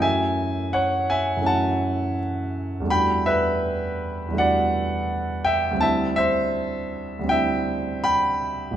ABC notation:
X:1
M:4/4
L:1/8
Q:1/4=83
K:F#mix
V:1 name="Grand piano"
[eg]2 [cf] [eg] [f=a]2 z2 | [K:Dmix] [gb] [Be]3 [df]3 [eg] | [ea] [ce]3 [eg]2 [gb]2 |]
V:2 name="Grand piano"
[F,,E,=A,CF]4 [F,,E,A,CF]4 | [K:Dmix] [E,,G,A,DF]4 [E,,G,A,DF]4 | [D,,G,CDE]4 [D,,G,CDE]4 |]